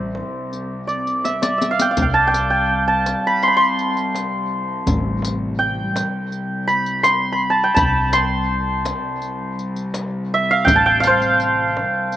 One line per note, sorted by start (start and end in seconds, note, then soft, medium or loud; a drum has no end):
0.00 0.20 A1 medium
0.00 1.96 C2 medium
0.00 1.27 C5 medium
0.00 0.87 D5 medium
0.00 0.64 E5 medium
0.15 tombak tek medium
0.51 riq soft
0.51 tombak ka soft
0.87 1.42 D5 medium
0.87 riq soft
0.87 tombak ka soft
1.06 riq soft
1.06 tombak ka soft
1.24 1.58 E5 medium
1.24 riq soft
1.24 tombak tek medium
1.42 3.88 D5 medium
1.42 riq medium
1.58 1.77 E5 medium
1.58 riq medium
1.58 tombak ka soft
1.71 1.91 F5 medium
1.79 2.02 G5 medium
1.79 riq medium
1.91 4.13 F5 medium
1.97 7.76 C2 medium
1.97 3.11 C2 medium
1.97 riq medium
1.97 tombak dum loud
2.02 2.27 G5 medium
2.14 2.87 A5 medium
2.27 2.50 G5 medium
2.34 riq soft
2.34 tombak tek medium
2.50 4.57 G5 medium
2.70 tombak ka soft
2.88 4.81 A5 medium
3.06 riq soft
3.06 tombak tek medium
3.27 3.47 B5 medium
3.42 3.54 C6 medium
3.42 riq soft
3.48 3.63 B5 medium
3.57 5.31 C6 loud
3.79 riq soft
3.97 riq soft
4.15 riq soft
4.15 tombak tek medium
4.87 6.01 A1 medium
4.87 riq soft
4.87 tombak dum loud
5.22 riq medium
5.22 tombak tek medium
5.59 7.63 G5 medium
5.59 tombak ka soft
5.96 riq medium
5.96 tombak tek medium
6.32 riq soft
6.68 7.09 B5 medium
6.68 riq soft
6.86 riq soft
7.03 7.38 C6 loud
7.03 riq medium
7.03 tombak tek medium
7.32 7.77 B5 medium
7.50 7.74 A5 medium
7.64 9.71 G5 medium
7.75 8.91 C2 medium
7.75 12.17 C2 medium
7.75 9.68 A5 medium
7.75 8.19 B5 medium
7.75 riq medium
7.75 tombak dum loud
8.13 9.87 C6 medium
8.13 riq medium
8.13 tombak tek medium
8.49 tombak ka soft
8.85 riq soft
8.85 tombak tek medium
9.22 riq soft
9.59 riq soft
9.76 riq soft
9.94 riq medium
9.94 tombak tek medium
10.34 10.57 E5 medium
10.51 11.00 F5 loud
10.65 11.81 A1 loud
10.65 10.86 G5 medium
10.65 riq medium
10.65 tombak dum loud
10.76 12.17 A5 medium
10.86 12.17 G5 medium
11.00 12.17 F5 loud
11.00 riq soft
11.00 tombak tek medium
11.07 12.17 C5 medium
11.22 riq soft
11.40 riq soft
11.40 tombak ka soft
11.77 tombak tek medium
12.12 riq soft
12.12 tombak ka soft